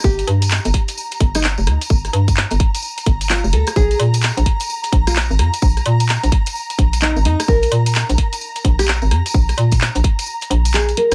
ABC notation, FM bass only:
X:1
M:4/4
L:1/16
Q:"Swing 16ths" 1/4=129
K:Bb
V:1 name="FM bass" clef=bass
G,,,2 G,,3 G,,, z4 G,,,3 F,,, D,, z | G,,,2 G,,3 G,,, z4 G,,,3 F,,, D,, z | B,,,2 B,,3 B,,, z4 B,,,3 _A,,, F,, z | B,,,2 B,,3 B,,, z4 B,,,3 _A,,, F,, z |
B,,,2 B,,3 B,,, z4 B,,,3 _A,,, F,, z | B,,,2 B,,3 B,,, z4 B,,,4 z B,,, |]